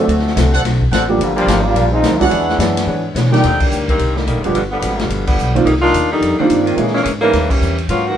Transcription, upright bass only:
0.08 0.35 D2 medium
0.36 0.63 C2 loud
0.64 0.91 B1 medium
0.91 1.18 A1 medium
1.19 1.46 G1 medium
1.46 1.74 G#1 medium
1.74 2.02 A#1 medium
2.03 2.30 D2 medium
2.31 2.58 E2 medium
2.58 2.86 F#2 medium
2.86 3.14 G#2 medium
3.15 3.42 B2 medium
3.44 3.70 D#2 medium
3.71 3.98 D2 medium
3.98 4.26 C2 medium
4.27 4.36 A#1 medium
4.36 4.44 G1 medium
4.45 4.54 D#1 medium
4.55 4.81 G1 medium
4.82 5.08 G#1 medium
5.09 5.37 G1 medium
5.38 5.64 B1 medium
5.65 5.92 C2 medium
5.93 6.20 D#2 medium
6.21 6.37 F2 medium
6.39 muted upright bass stroke soft
6.49 6.76 G2 medium
6.77 7.04 A#2 medium
7.05 7.32 G#2 medium
7.33 7.60 D#2 medium
7.61 7.88 E2 medium
7.88 8.16 G#2 medium

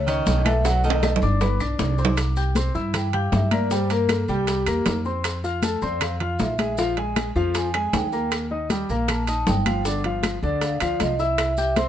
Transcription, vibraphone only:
0.07 0.47 D#5 medium
0.46 0.54 E5 medium
0.65 0.83 F#5 loud
0.84 1.19 D#5 medium
2.96 3.14 G5 medium
3.14 3.33 F5 medium
3.34 3.52 E5 medium
3.53 3.71 D5 medium
3.73 3.90 C5 medium
3.91 4.09 A#4 medium
4.11 4.29 A4 medium
4.30 4.83 G4 medium
5.83 6.01 D5 medium
6.03 6.21 F5 medium
6.22 6.40 F5 medium
6.42 6.77 E5 medium
7.37 7.55 F5 loud
7.57 7.75 G#5 medium
7.76 7.94 G#5 medium
7.95 8.30 G5 medium
8.91 9.09 F5 loud
9.10 9.28 A5 medium
9.29 9.47 A5 medium
9.48 9.83 G5 medium
10.64 10.82 F5 medium
10.83 11.01 D5 medium
11.02 11.20 D#5 medium
11.21 11.56 E5 loud
11.59 11.77 E5 medium

